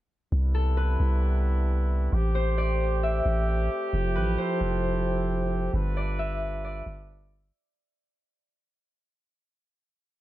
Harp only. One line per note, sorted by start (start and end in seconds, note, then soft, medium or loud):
0.54 2.74 A4 medium
0.77 2.41 B4 medium
2.35 4.21 C5 medium
2.58 4.43 D5 medium
3.03 4.76 E5 medium
4.15 4.44 B4 medium
4.38 6.36 C5 medium
5.97 6.64 D5 medium
6.19 7.91 E5 medium
6.64 8.49 D5 medium